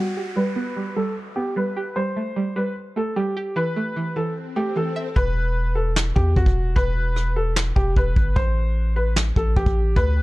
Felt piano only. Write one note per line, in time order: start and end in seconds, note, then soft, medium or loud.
0.00 0.34 F#4 medium
0.36 0.93 B4 loud
0.96 1.13 A4 medium
1.36 1.52 G4 medium
1.57 1.94 B4 medium
1.96 2.52 C5 loud
2.56 2.73 B4 medium
2.97 3.13 A4 medium
3.16 3.54 G4 medium
3.56 4.13 B4 loud
4.16 4.33 A4 medium
4.56 4.73 G4 medium
4.77 5.14 A4 medium
5.16 5.73 B4 loud
5.75 5.92 A4 medium
6.16 6.32 G4 medium
6.37 6.74 F#4 medium
6.76 7.32 B4 loud
7.36 7.53 A4 medium
7.76 7.92 G4 medium
7.97 8.34 B4 medium
8.36 8.93 C5 loud
8.96 9.13 B4 medium
9.37 9.53 A4 medium
9.56 9.94 G4 medium
9.96 10.22 B4 loud